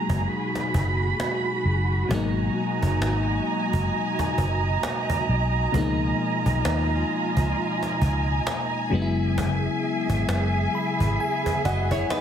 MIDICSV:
0, 0, Header, 1, 6, 480
1, 0, Start_track
1, 0, Key_signature, 5, "minor"
1, 0, Tempo, 909091
1, 1112, Time_signature, 4, 2, 24, 8
1, 6446, End_track
2, 0, Start_track
2, 0, Title_t, "String section"
2, 0, Program_c, 0, 48
2, 0, Note_on_c, 0, 66, 74
2, 0, Note_on_c, 0, 68, 66
2, 0, Note_on_c, 0, 82, 80
2, 142, Note_off_c, 0, 82, 0
2, 151, Note_on_c, 0, 83, 80
2, 1092, Note_off_c, 0, 68, 0
2, 1102, Note_off_c, 0, 83, 0
2, 1112, Note_on_c, 0, 75, 66
2, 1112, Note_on_c, 0, 80, 67
2, 1112, Note_on_c, 0, 82, 77
2, 3011, Note_off_c, 0, 66, 0
2, 3013, Note_off_c, 0, 80, 0
2, 3031, Note_on_c, 0, 80, 78
2, 3032, Note_on_c, 0, 65, 74
2, 4691, Note_off_c, 0, 75, 0
2, 4691, Note_off_c, 0, 82, 0
2, 4695, Note_off_c, 0, 65, 0
2, 4710, Note_on_c, 0, 76, 70
2, 4711, Note_on_c, 0, 68, 72
2, 6446, Note_off_c, 0, 68, 0
2, 6446, Note_off_c, 0, 76, 0
2, 6446, Note_off_c, 0, 80, 0
2, 6446, End_track
3, 0, Start_track
3, 0, Title_t, "Nylon-string guitar"
3, 0, Program_c, 1, 24
3, 6151, Note_on_c, 1, 75, 70
3, 6155, Note_on_c, 1, 66, 62
3, 6284, Note_off_c, 1, 75, 0
3, 6286, Note_off_c, 1, 66, 0
3, 6291, Note_on_c, 1, 73, 77
3, 6294, Note_on_c, 1, 64, 63
3, 6387, Note_off_c, 1, 73, 0
3, 6389, Note_off_c, 1, 64, 0
3, 6391, Note_on_c, 1, 71, 80
3, 6395, Note_on_c, 1, 63, 68
3, 6446, Note_off_c, 1, 63, 0
3, 6446, Note_off_c, 1, 71, 0
3, 6446, End_track
4, 0, Start_track
4, 0, Title_t, "FM electric piano"
4, 0, Program_c, 2, 5
4, 0, Control_c, 2, 64, 127
4, 0, Note_on_c, 2, 47, 72
4, 0, Note_on_c, 2, 54, 63
4, 0, Note_on_c, 2, 56, 66
4, 0, Note_on_c, 2, 58, 65
4, 0, Note_on_c, 2, 63, 78
4, 1085, Note_off_c, 2, 47, 0
4, 1089, Note_off_c, 2, 54, 0
4, 1092, Note_off_c, 2, 56, 0
4, 1096, Note_off_c, 2, 58, 0
4, 1100, Note_off_c, 2, 63, 0
4, 1102, Note_on_c, 2, 47, 70
4, 1109, Note_on_c, 2, 54, 67
4, 1115, Note_on_c, 2, 56, 66
4, 1118, Control_c, 2, 64, 0
4, 1124, Note_on_c, 2, 58, 66
4, 1130, Note_on_c, 2, 63, 78
4, 1224, Control_c, 2, 64, 127
4, 3006, Note_off_c, 2, 47, 0
4, 3009, Note_off_c, 2, 54, 0
4, 3013, Note_off_c, 2, 56, 0
4, 3017, Note_off_c, 2, 58, 0
4, 3020, Note_off_c, 2, 63, 0
4, 3021, Note_on_c, 2, 47, 72
4, 3029, Note_on_c, 2, 53, 66
4, 3035, Note_on_c, 2, 56, 67
4, 3040, Control_c, 2, 64, 0
4, 3043, Note_on_c, 2, 58, 69
4, 3050, Note_on_c, 2, 63, 81
4, 3136, Control_c, 2, 64, 127
4, 4685, Note_off_c, 2, 47, 0
4, 4690, Note_off_c, 2, 53, 0
4, 4693, Note_off_c, 2, 56, 0
4, 4697, Note_off_c, 2, 58, 0
4, 4699, Note_on_c, 2, 49, 74
4, 4700, Note_off_c, 2, 63, 0
4, 4707, Note_on_c, 2, 54, 69
4, 4714, Note_on_c, 2, 56, 70
4, 4719, Control_c, 2, 64, 0
4, 4720, Note_on_c, 2, 59, 71
4, 4727, Note_on_c, 2, 63, 65
4, 4759, Note_off_c, 2, 63, 0
4, 4761, Note_on_c, 2, 64, 82
4, 4818, Control_c, 2, 64, 127
4, 5675, Note_on_c, 2, 83, 65
4, 5897, Note_off_c, 2, 83, 0
4, 5915, Note_on_c, 2, 80, 73
4, 6137, Note_off_c, 2, 80, 0
4, 6154, Note_on_c, 2, 78, 66
4, 6377, Note_off_c, 2, 78, 0
4, 6395, Note_on_c, 2, 75, 68
4, 6446, Note_off_c, 2, 49, 0
4, 6446, Note_off_c, 2, 54, 0
4, 6446, Note_off_c, 2, 56, 0
4, 6446, Note_off_c, 2, 59, 0
4, 6446, Note_off_c, 2, 64, 0
4, 6446, Note_off_c, 2, 75, 0
4, 6446, End_track
5, 0, Start_track
5, 0, Title_t, "Fingered electric bass"
5, 0, Program_c, 3, 33
5, 51, Note_on_c, 3, 30, 85
5, 133, Note_off_c, 3, 30, 0
5, 393, Note_on_c, 3, 30, 85
5, 589, Note_off_c, 3, 30, 0
5, 872, Note_on_c, 3, 30, 73
5, 1068, Note_off_c, 3, 30, 0
5, 1112, Note_on_c, 3, 32, 99
5, 1308, Note_off_c, 3, 32, 0
5, 1492, Note_on_c, 3, 30, 81
5, 1591, Note_off_c, 3, 30, 0
5, 1591, Note_on_c, 3, 32, 81
5, 1788, Note_off_c, 3, 32, 0
5, 1972, Note_on_c, 3, 30, 85
5, 2054, Note_off_c, 3, 30, 0
5, 2313, Note_on_c, 3, 30, 85
5, 2509, Note_off_c, 3, 30, 0
5, 2793, Note_on_c, 3, 35, 82
5, 2989, Note_off_c, 3, 35, 0
5, 3031, Note_on_c, 3, 37, 91
5, 3228, Note_off_c, 3, 37, 0
5, 3410, Note_on_c, 3, 35, 81
5, 3493, Note_off_c, 3, 35, 0
5, 3513, Note_on_c, 3, 39, 93
5, 3709, Note_off_c, 3, 39, 0
5, 3890, Note_on_c, 3, 37, 85
5, 3973, Note_off_c, 3, 37, 0
5, 4232, Note_on_c, 3, 37, 89
5, 4428, Note_off_c, 3, 37, 0
5, 4710, Note_on_c, 3, 30, 93
5, 5104, Note_off_c, 3, 30, 0
5, 5330, Note_on_c, 3, 32, 72
5, 5413, Note_off_c, 3, 32, 0
5, 5429, Note_on_c, 3, 30, 77
5, 5627, Note_off_c, 3, 30, 0
5, 5810, Note_on_c, 3, 32, 72
5, 5893, Note_off_c, 3, 32, 0
5, 6152, Note_on_c, 3, 30, 86
5, 6348, Note_off_c, 3, 30, 0
5, 6446, End_track
6, 0, Start_track
6, 0, Title_t, "Cajon"
6, 50, Note_on_c, 9, 36, 77
6, 103, Note_off_c, 9, 36, 0
6, 293, Note_on_c, 9, 38, 69
6, 345, Note_off_c, 9, 38, 0
6, 392, Note_on_c, 9, 36, 84
6, 445, Note_off_c, 9, 36, 0
6, 632, Note_on_c, 9, 38, 96
6, 685, Note_off_c, 9, 38, 0
6, 1112, Note_on_c, 9, 36, 116
6, 1165, Note_off_c, 9, 36, 0
6, 1492, Note_on_c, 9, 36, 81
6, 1544, Note_off_c, 9, 36, 0
6, 1593, Note_on_c, 9, 38, 101
6, 1646, Note_off_c, 9, 38, 0
6, 1971, Note_on_c, 9, 36, 78
6, 2024, Note_off_c, 9, 36, 0
6, 2213, Note_on_c, 9, 36, 83
6, 2214, Note_on_c, 9, 38, 70
6, 2265, Note_off_c, 9, 36, 0
6, 2267, Note_off_c, 9, 38, 0
6, 2313, Note_on_c, 9, 36, 86
6, 2366, Note_off_c, 9, 36, 0
6, 2552, Note_on_c, 9, 38, 95
6, 2605, Note_off_c, 9, 38, 0
6, 2691, Note_on_c, 9, 36, 91
6, 2744, Note_off_c, 9, 36, 0
6, 3032, Note_on_c, 9, 36, 111
6, 3085, Note_off_c, 9, 36, 0
6, 3411, Note_on_c, 9, 36, 81
6, 3464, Note_off_c, 9, 36, 0
6, 3511, Note_on_c, 9, 38, 110
6, 3564, Note_off_c, 9, 38, 0
6, 3890, Note_on_c, 9, 36, 81
6, 3943, Note_off_c, 9, 36, 0
6, 4132, Note_on_c, 9, 38, 66
6, 4185, Note_off_c, 9, 38, 0
6, 4232, Note_on_c, 9, 36, 83
6, 4285, Note_off_c, 9, 36, 0
6, 4470, Note_on_c, 9, 38, 101
6, 4523, Note_off_c, 9, 38, 0
6, 4951, Note_on_c, 9, 36, 111
6, 5004, Note_off_c, 9, 36, 0
6, 5331, Note_on_c, 9, 36, 83
6, 5383, Note_off_c, 9, 36, 0
6, 5431, Note_on_c, 9, 38, 103
6, 5484, Note_off_c, 9, 38, 0
6, 5810, Note_on_c, 9, 36, 81
6, 5863, Note_off_c, 9, 36, 0
6, 6051, Note_on_c, 9, 36, 84
6, 6104, Note_off_c, 9, 36, 0
6, 6152, Note_on_c, 9, 36, 82
6, 6205, Note_off_c, 9, 36, 0
6, 6289, Note_on_c, 9, 36, 93
6, 6341, Note_off_c, 9, 36, 0
6, 6391, Note_on_c, 9, 38, 100
6, 6444, Note_off_c, 9, 38, 0
6, 6446, End_track
0, 0, End_of_file